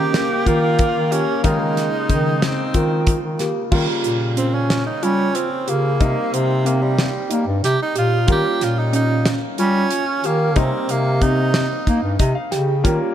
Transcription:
0.00 1.41 C#3 soft
0.00 1.41 G3 medium
0.00 1.40 A#3 medium
0.00 1.46 A#3 loud
0.00 0.25 C#4 medium
0.00 1.40 F4 medium
0.00 0.48 G4 medium
0.14 snare medium
0.14 closed hi-hat medium
0.46 0.89 D#3 medium
0.46 0.90 F4 medium
0.46 1.13 F4 medium
0.46 kick medium
0.46 closed hi-hat medium
0.79 kick loud
0.79 closed hi-hat medium
0.95 1.24 D#3 medium
1.12 1.43 C#4 medium
1.12 1.34 G4 medium
1.12 closed hi-hat soft
1.44 3.69 C#3 medium
1.44 1.59 D#3 medium
1.44 2.44 G#3 medium
1.44 3.69 G#3 medium
1.44 3.69 A#3 medium
1.44 1.88 D#4 medium
1.44 3.36 D#4 medium
1.44 3.69 F4 medium
1.44 kick loud
1.44 closed hi-hat medium
1.60 1.89 D#3 medium
1.77 snare soft
1.77 closed hi-hat medium
2.09 2.53 C#3 medium
2.09 2.38 D#3 medium
2.09 kick medium
2.09 closed hi-hat medium
2.42 3.13 C4 medium
2.42 snare loud
2.42 closed hi-hat medium
2.74 3.17 D#3 medium
2.74 3.19 F4 medium
2.74 kick medium
2.74 closed hi-hat medium
3.07 kick loud
3.07 closed hi-hat medium
3.24 3.52 D#3 medium
3.39 3.70 A#3 medium
3.39 3.62 G4 medium
3.39 snare soft
3.39 closed hi-hat medium
3.72 5.96 C#3 medium
3.72 3.86 D#3 medium
3.72 5.96 G3 medium
3.72 5.96 A#3 medium
3.72 4.16 F4 medium
3.72 5.96 F4 medium
3.72 kick loud
3.72 crash medium
4.04 4.90 A#2 medium
4.04 closed hi-hat medium
4.37 4.56 C4 medium
4.37 4.81 C#4 medium
4.37 closed hi-hat medium
4.54 4.85 C#4 medium
4.70 snare loud
4.70 closed hi-hat medium
4.86 5.05 D#4 medium
5.03 5.31 G3 medium
5.03 5.37 C#4 medium
5.03 5.47 F4 medium
5.03 closed hi-hat soft
5.35 5.70 C4 medium
5.35 closed hi-hat medium
5.68 6.02 C#3 medium
5.68 6.35 A#3 medium
5.68 5.90 G4 medium
5.68 closed hi-hat soft
6.00 6.15 C3 medium
6.00 8.24 G3 medium
6.00 8.24 A#3 medium
6.00 8.24 C4 medium
6.00 8.24 D#4 medium
6.00 6.45 D#4 medium
6.00 kick loud
6.00 closed hi-hat medium
6.33 7.18 C3 medium
6.33 6.68 C4 medium
6.33 closed hi-hat medium
6.65 6.84 A#3 medium
6.65 7.09 C4 medium
6.65 closed hi-hat medium
6.82 7.47 G3 medium
6.99 snare medium
6.99 closed hi-hat medium
7.30 7.45 A#3 medium
7.30 7.74 D#4 medium
7.30 closed hi-hat medium
7.47 7.61 G2 medium
7.63 7.78 C3 medium
7.63 7.79 G4 medium
7.63 snare soft
7.63 closed hi-hat medium
7.82 7.96 D#4 medium
7.95 8.24 A#2 medium
7.95 8.27 F4 medium
7.95 8.18 G4 medium
7.95 closed hi-hat medium
8.27 8.43 D#3 medium
8.27 10.53 G3 medium
8.27 10.53 A#3 medium
8.27 10.53 C#4 medium
8.27 8.72 F4 medium
8.27 10.53 F4 medium
8.27 kick loud
8.27 closed hi-hat medium
8.32 8.65 G4 medium
8.61 9.47 A#2 medium
8.61 8.80 F4 medium
8.61 snare soft
8.61 closed hi-hat medium
8.79 8.94 D#4 medium
8.93 9.37 C#4 medium
8.93 9.30 D#4 medium
8.93 closed hi-hat medium
9.26 snare loud
9.26 closed hi-hat medium
9.58 9.87 G3 loud
9.58 10.27 C#4 medium
9.58 10.03 F4 medium
9.58 closed hi-hat medium
9.91 closed hi-hat medium
10.24 10.58 D#3 medium
10.24 10.59 A#3 medium
10.24 10.46 G4 medium
10.24 closed hi-hat soft
10.56 10.71 C3 medium
10.56 12.80 G3 medium
10.56 12.80 A#3 medium
10.56 12.80 C4 medium
10.56 10.92 C4 medium
10.56 12.80 D#4 medium
10.56 11.01 D#4 medium
10.56 kick loud
10.56 closed hi-hat medium
10.89 11.74 C3 medium
10.89 11.23 A#3 medium
10.89 closed hi-hat medium
11.21 11.66 C4 medium
11.21 12.19 D#4 medium
11.21 kick medium
11.21 closed hi-hat medium
11.54 snare loud
11.54 closed hi-hat medium
11.87 12.01 A#3 medium
11.87 12.31 D#4 medium
11.87 kick medium
11.87 closed hi-hat medium
12.03 12.17 G2 medium
12.19 12.34 C3 medium
12.19 12.34 D#5 medium
12.19 kick loud
12.19 closed hi-hat medium
12.35 12.50 F5 medium
12.51 12.80 C#3 medium
12.51 12.74 G4 medium
12.51 12.82 G5 medium
12.51 snare soft
12.51 closed hi-hat medium
12.84 12.99 D#3 medium
12.84 13.15 G3 medium
12.84 13.15 A#3 medium
12.84 13.15 C#4 medium
12.84 13.15 F4 medium
12.84 kick loud
12.84 closed hi-hat medium

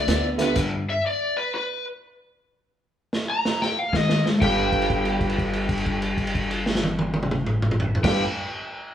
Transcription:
0.00 0.25 D5 medium
0.08 0.55 D2 medium
0.08 0.36 D3 medium
0.08 0.36 B3 medium
0.08 snare loud
0.08 closed hi-hat medium
0.37 0.54 D3 medium
0.37 0.54 A3 medium
0.37 0.54 B3 medium
0.37 0.55 B3 medium
0.37 0.55 D4 medium
0.37 0.55 F4 medium
0.37 0.55 G4 medium
0.37 snare soft
0.37 closed hi-hat medium
0.42 0.57 B4 medium
0.55 0.83 G2 medium
0.55 0.96 G2 medium
0.55 0.84 D3 medium
0.55 kick loud
0.55 snare soft
0.55 closed hi-hat medium
0.55 crash medium
0.90 1.05 E5 medium
1.06 1.35 D5 loud
1.37 1.53 B4 medium
1.55 1.84 B4 medium
3.13 snare medium
3.30 3.61 A#5 loud
3.45 snare medium
3.62 3.79 G5 medium
3.62 snare medium
3.79 3.96 F5 medium
3.93 4.21 G#2 medium
3.93 4.40 G#2 medium
3.93 4.21 D#3 medium
3.93 4.25 D#5 medium
3.93 kick medium
3.93 snare medium
4.09 snare medium
4.24 4.40 G#2 medium
4.24 4.40 F3 medium
4.24 snare medium
4.39 7.93 G1 medium
4.39 7.95 G2 medium
4.39 7.96 G3 medium
4.39 7.96 B3 medium
4.39 7.97 D4 medium
4.39 7.96 F4 medium
4.39 7.93 G4 loud
4.39 7.97 A4 medium
4.39 7.93 G5 medium
4.39 kick medium
4.39 crash medium
4.44 7.98 F4 loud
4.44 7.98 B4 loud
4.72 kick medium
4.72 crash soft
4.82 crash soft
4.90 kick medium
4.90 crash soft
5.05 crash soft
5.21 kick medium
5.21 crash soft
5.29 crash soft
5.38 kick medium
5.38 crash soft
5.53 crash soft
5.69 kick medium
5.69 crash medium
5.77 crash soft
5.86 kick medium
5.86 crash soft
6.02 crash soft
6.18 kick medium
6.18 crash soft
6.27 crash soft
6.35 kick medium
6.35 crash soft
6.51 crash medium
6.66 snare medium
6.75 snare loud
6.84 high tom medium
6.99 high tom medium
7.14 high tom loud
7.23 mid tom medium
7.31 mid tom loud
7.46 mid tom medium
7.62 mid tom loud
7.71 mid tom loud
7.80 floor tom loud
7.95 floor tom loud
8.03 8.21 G1 medium
8.03 8.22 G2 medium
8.03 8.22 G3 medium
8.03 8.23 G3 medium
8.03 8.23 B3 medium
8.03 8.22 D4 medium
8.03 8.23 F4 medium
8.03 8.24 F4 medium
8.03 8.23 G4 medium
8.03 8.24 A4 medium
8.03 8.24 B4 medium
8.03 8.22 G5 medium
8.03 kick loud
8.03 snare loud
8.03 crash medium

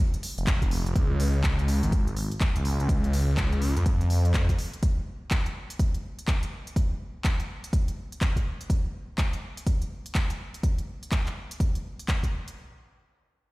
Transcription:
0.14 closed hi-hat soft
0.23 open hi-hat loud
0.38 0.60 F1 loud
0.38 closed hi-hat soft
0.47 kick loud
0.47 clap loud
0.47 closed hi-hat medium
0.62 0.84 F1 loud
0.62 kick medium
0.62 closed hi-hat soft
0.71 open hi-hat medium
0.86 0.94 F1 loud
0.86 closed hi-hat soft
0.96 1.18 C#2 medium
0.96 kick loud
0.96 closed hi-hat medium
1.20 1.56 C#2 medium
1.20 open hi-hat loud
1.44 kick loud
1.44 clap loud
1.44 closed hi-hat medium
1.59 1.81 C#2 medium
1.59 closed hi-hat soft
1.68 open hi-hat loud
1.83 2.29 G#1 loud
1.83 closed hi-hat soft
1.92 kick loud
1.92 closed hi-hat medium
2.07 closed hi-hat soft
2.17 open hi-hat loud
2.32 closed hi-hat soft
2.41 kick loud
2.41 clap loud
2.41 closed hi-hat medium
2.56 2.77 C#2 medium
2.56 closed hi-hat soft
2.65 open hi-hat medium
2.80 3.26 C#2 loud
2.80 closed hi-hat soft
2.89 kick loud
2.89 closed hi-hat medium
3.04 closed hi-hat soft
3.13 open hi-hat loud
3.28 3.74 C#2 medium
3.37 kick loud
3.37 clap loud
3.37 closed hi-hat medium
3.52 closed hi-hat soft
3.62 open hi-hat medium
3.77 4.09 F2 loud
3.77 closed hi-hat soft
3.86 kick loud
3.86 closed hi-hat medium
4.01 closed hi-hat soft
4.10 4.47 F2 medium
4.10 open hi-hat loud
4.25 closed hi-hat soft
4.34 kick loud
4.34 clap loud
4.34 closed hi-hat medium
4.49 kick medium
4.49 closed hi-hat soft
4.59 open hi-hat medium
4.73 closed hi-hat soft
4.83 kick loud
4.83 closed hi-hat medium
5.31 kick loud
5.31 clap loud
5.31 closed hi-hat medium
5.46 closed hi-hat soft
5.70 closed hi-hat soft
5.79 kick loud
5.79 closed hi-hat medium
5.94 closed hi-hat soft
6.19 closed hi-hat soft
6.28 kick loud
6.28 clap loud
6.28 closed hi-hat medium
6.43 closed hi-hat soft
6.67 closed hi-hat soft
6.76 kick loud
6.76 closed hi-hat medium
7.25 kick loud
7.25 clap loud
7.25 closed hi-hat medium
7.40 closed hi-hat soft
7.64 closed hi-hat soft
7.73 kick loud
7.73 closed hi-hat medium
7.88 closed hi-hat soft
8.12 closed hi-hat soft
8.21 kick loud
8.21 clap loud
8.21 closed hi-hat medium
8.36 kick medium
8.36 closed hi-hat soft
8.61 closed hi-hat soft
8.70 kick loud
8.70 closed hi-hat medium
9.18 kick loud
9.18 clap loud
9.18 closed hi-hat medium
9.33 closed hi-hat soft
9.57 closed hi-hat soft
9.67 kick loud
9.67 closed hi-hat medium
9.82 closed hi-hat soft
10.06 closed hi-hat soft
10.15 kick loud
10.15 clap loud
10.15 closed hi-hat medium
10.30 closed hi-hat soft
10.54 closed hi-hat soft
10.63 kick loud
10.63 closed hi-hat medium
10.78 closed hi-hat soft
11.03 closed hi-hat soft
11.12 kick loud
11.12 clap loud
11.12 closed hi-hat medium
11.27 clap soft
11.27 closed hi-hat soft
11.51 closed hi-hat medium
11.60 kick loud
11.60 closed hi-hat medium
11.75 closed hi-hat soft
11.99 closed hi-hat soft
12.08 kick loud
12.08 clap loud
12.08 closed hi-hat medium
12.23 kick medium
12.23 closed hi-hat soft
12.48 closed hi-hat soft

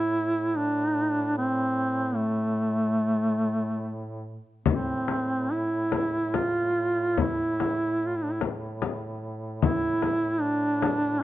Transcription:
0.00 4.49 A2 soft
0.00 0.59 E4 loud
0.58 1.37 D4 medium
1.38 2.17 C4 medium
2.15 4.24 A3 medium
4.66 11.23 A2 soft
4.66 5.54 C4 medium
4.66 frame drum medium
5.08 frame drum soft
5.52 6.38 E4 medium
5.92 frame drum medium
6.34 7.21 F4 medium
6.34 frame drum medium
7.17 8.07 E4 medium
7.17 frame drum medium
7.60 frame drum soft
8.06 8.18 F4 medium
8.16 8.25 E4 medium
8.23 8.34 D4 medium
8.32 8.42 E4 medium
8.41 frame drum medium
8.82 frame drum medium
9.62 10.43 E4 loud
9.62 frame drum medium
10.02 frame drum soft
10.42 11.22 D4 medium
10.82 frame drum medium

